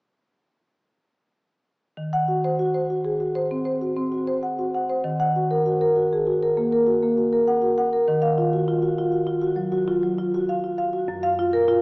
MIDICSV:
0, 0, Header, 1, 2, 480
1, 0, Start_track
1, 0, Tempo, 616016
1, 1536, Time_signature, 5, 2, 24, 8
1, 4407, Tempo, 603015
1, 9313, End_track
2, 0, Start_track
2, 0, Title_t, "Marimba"
2, 0, Program_c, 0, 12
2, 1537, Note_on_c, 0, 51, 49
2, 1660, Note_on_c, 0, 78, 54
2, 1778, Note_on_c, 0, 66, 42
2, 1850, Note_off_c, 0, 78, 0
2, 1905, Note_on_c, 0, 72, 44
2, 1969, Note_off_c, 0, 66, 0
2, 2020, Note_on_c, 0, 66, 47
2, 2092, Note_off_c, 0, 72, 0
2, 2138, Note_on_c, 0, 72, 40
2, 2209, Note_off_c, 0, 66, 0
2, 2260, Note_on_c, 0, 66, 41
2, 2327, Note_off_c, 0, 72, 0
2, 2373, Note_on_c, 0, 68, 37
2, 2448, Note_off_c, 0, 66, 0
2, 2493, Note_off_c, 0, 68, 0
2, 2495, Note_on_c, 0, 66, 44
2, 2613, Note_on_c, 0, 72, 45
2, 2685, Note_off_c, 0, 66, 0
2, 2736, Note_on_c, 0, 60, 40
2, 2803, Note_off_c, 0, 72, 0
2, 2846, Note_on_c, 0, 72, 44
2, 2924, Note_off_c, 0, 60, 0
2, 2971, Note_on_c, 0, 66, 43
2, 3038, Note_off_c, 0, 72, 0
2, 3091, Note_on_c, 0, 60, 41
2, 3160, Note_off_c, 0, 66, 0
2, 3209, Note_on_c, 0, 66, 43
2, 3280, Note_off_c, 0, 60, 0
2, 3330, Note_on_c, 0, 72, 45
2, 3399, Note_off_c, 0, 66, 0
2, 3450, Note_on_c, 0, 78, 40
2, 3519, Note_off_c, 0, 72, 0
2, 3576, Note_on_c, 0, 66, 39
2, 3639, Note_off_c, 0, 78, 0
2, 3698, Note_on_c, 0, 78, 44
2, 3762, Note_off_c, 0, 66, 0
2, 3815, Note_on_c, 0, 72, 39
2, 3883, Note_off_c, 0, 78, 0
2, 3894, Note_off_c, 0, 51, 0
2, 3928, Note_on_c, 0, 51, 50
2, 3929, Note_off_c, 0, 72, 0
2, 4051, Note_on_c, 0, 78, 52
2, 4177, Note_on_c, 0, 66, 41
2, 4240, Note_off_c, 0, 78, 0
2, 4291, Note_on_c, 0, 70, 45
2, 4363, Note_off_c, 0, 66, 0
2, 4411, Note_on_c, 0, 66, 45
2, 4481, Note_off_c, 0, 70, 0
2, 4531, Note_on_c, 0, 70, 42
2, 4603, Note_off_c, 0, 66, 0
2, 4650, Note_on_c, 0, 66, 42
2, 4722, Note_off_c, 0, 70, 0
2, 4782, Note_on_c, 0, 68, 37
2, 4841, Note_off_c, 0, 66, 0
2, 4894, Note_on_c, 0, 66, 46
2, 4895, Note_off_c, 0, 68, 0
2, 5020, Note_on_c, 0, 70, 45
2, 5083, Note_off_c, 0, 66, 0
2, 5137, Note_on_c, 0, 58, 42
2, 5206, Note_off_c, 0, 70, 0
2, 5258, Note_on_c, 0, 70, 44
2, 5325, Note_off_c, 0, 58, 0
2, 5371, Note_on_c, 0, 66, 45
2, 5446, Note_off_c, 0, 70, 0
2, 5497, Note_on_c, 0, 58, 39
2, 5564, Note_off_c, 0, 66, 0
2, 5615, Note_on_c, 0, 66, 42
2, 5688, Note_off_c, 0, 58, 0
2, 5737, Note_on_c, 0, 70, 44
2, 5808, Note_off_c, 0, 66, 0
2, 5856, Note_on_c, 0, 78, 42
2, 5929, Note_off_c, 0, 70, 0
2, 5969, Note_on_c, 0, 66, 40
2, 6048, Note_off_c, 0, 78, 0
2, 6096, Note_on_c, 0, 78, 51
2, 6164, Note_off_c, 0, 66, 0
2, 6217, Note_on_c, 0, 70, 42
2, 6287, Note_off_c, 0, 78, 0
2, 6305, Note_off_c, 0, 51, 0
2, 6335, Note_on_c, 0, 51, 57
2, 6336, Note_off_c, 0, 70, 0
2, 6447, Note_on_c, 0, 77, 55
2, 6575, Note_on_c, 0, 65, 44
2, 6643, Note_off_c, 0, 77, 0
2, 6697, Note_on_c, 0, 66, 45
2, 6766, Note_off_c, 0, 65, 0
2, 6815, Note_on_c, 0, 65, 47
2, 6887, Note_off_c, 0, 66, 0
2, 6929, Note_on_c, 0, 66, 41
2, 7005, Note_off_c, 0, 65, 0
2, 7055, Note_on_c, 0, 65, 46
2, 7122, Note_off_c, 0, 66, 0
2, 7166, Note_on_c, 0, 66, 41
2, 7245, Note_off_c, 0, 65, 0
2, 7283, Note_on_c, 0, 65, 48
2, 7289, Note_off_c, 0, 66, 0
2, 7399, Note_on_c, 0, 66, 47
2, 7480, Note_off_c, 0, 65, 0
2, 7516, Note_on_c, 0, 54, 42
2, 7599, Note_off_c, 0, 66, 0
2, 7643, Note_on_c, 0, 66, 52
2, 7718, Note_off_c, 0, 54, 0
2, 7768, Note_on_c, 0, 65, 51
2, 7841, Note_off_c, 0, 66, 0
2, 7888, Note_on_c, 0, 54, 42
2, 7963, Note_off_c, 0, 65, 0
2, 8011, Note_on_c, 0, 65, 48
2, 8083, Note_off_c, 0, 54, 0
2, 8139, Note_on_c, 0, 66, 48
2, 8204, Note_off_c, 0, 65, 0
2, 8256, Note_on_c, 0, 77, 48
2, 8327, Note_off_c, 0, 66, 0
2, 8373, Note_on_c, 0, 65, 41
2, 8445, Note_off_c, 0, 77, 0
2, 8487, Note_on_c, 0, 77, 53
2, 8563, Note_off_c, 0, 65, 0
2, 8606, Note_on_c, 0, 66, 46
2, 8680, Note_off_c, 0, 77, 0
2, 8698, Note_off_c, 0, 51, 0
2, 8726, Note_on_c, 0, 42, 55
2, 8728, Note_off_c, 0, 66, 0
2, 8845, Note_on_c, 0, 77, 62
2, 8971, Note_on_c, 0, 65, 48
2, 9038, Note_off_c, 0, 77, 0
2, 9085, Note_on_c, 0, 70, 52
2, 9160, Note_off_c, 0, 65, 0
2, 9203, Note_on_c, 0, 65, 52
2, 9276, Note_off_c, 0, 70, 0
2, 9313, Note_off_c, 0, 42, 0
2, 9313, Note_off_c, 0, 65, 0
2, 9313, End_track
0, 0, End_of_file